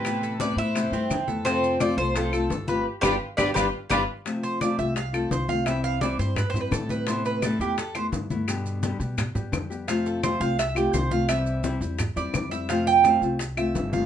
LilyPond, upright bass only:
\new Staff \with { instrumentName = "Upright bass" } { \clef bass \time 4/4 \key f \lydian \tempo 4 = 171 a,4. a,4 g,8 f,4~ | f,4. c,4. g,,4 | r8 g,,8 r8 g,,8 g,,8 r8 g,,8 r8 | r4. c,4. c,4~ |
c,4. g,4. a,4~ | a,4. e,4. g,4~ | g,4. b,4 g,8 f,4~ | f,4. c,4. c,4~ |
c,4. e,4 e,8 f,4~ | f,4. c,4. g,,4 | }